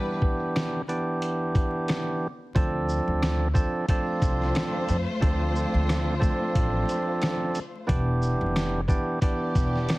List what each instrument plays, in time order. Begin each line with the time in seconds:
Already playing: tonewheel organ E3 B3 D4 G4, string section G3 E4 B4
0.22 kick
0.56 cross-stick, snare, closed hi-hat
0.88 tonewheel organ E3 B3 D4 G4, closed hi-hat
1.22 closed hi-hat
1.55 kick, closed hi-hat
1.88 cross-stick, snare, closed hi-hat
2.55 upright bass D2, tonewheel organ F3 C4 D4 A4, kick, closed hi-hat
2.89 shaker
3.08 upright bass D2
3.23 cross-stick, snare, closed hi-hat
3.54 tonewheel organ F3 C4 D4 A4, kick, shaker
3.88 tonewheel organ F3 C4 D4 A4, string section A3 F4 C5, kick, closed hi-hat
4.22 upright bass C2, kick, closed hi-hat, shaker
4.42 snare
4.55 cross-stick, snare, closed hi-hat
4.89 upright bass F2, closed hi-hat, shaker
5.21 upright bass D2, tonewheel organ F3 C4 D4 A4, kick, closed hi-hat
5.56 shaker
5.74 upright bass D2
5.89 cross-stick, snare, closed hi-hat
6.19 tonewheel organ F3 C4 D4 A4, kick, shaker
6.55 upright bass A1, kick, closed hi-hat
6.89 closed hi-hat, shaker
7.22 cross-stick, snare, closed hi-hat
7.55 closed hi-hat, shaker
7.87 upright bass E1, tonewheel organ E3 B3 D4 G4, kick, closed hi-hat
8.22 shaker
8.41 upright bass F1
8.56 cross-stick, snare, closed hi-hat
8.88 tonewheel organ E3 B3 D4 G4, kick, shaker
9.22 tonewheel organ E3 B3 D4 G4, string section B3 G4 D5, kick, closed hi-hat
9.55 upright bass E1, kick, closed hi-hat, shaker
9.76 snare
9.89 cross-stick, snare, closed hi-hat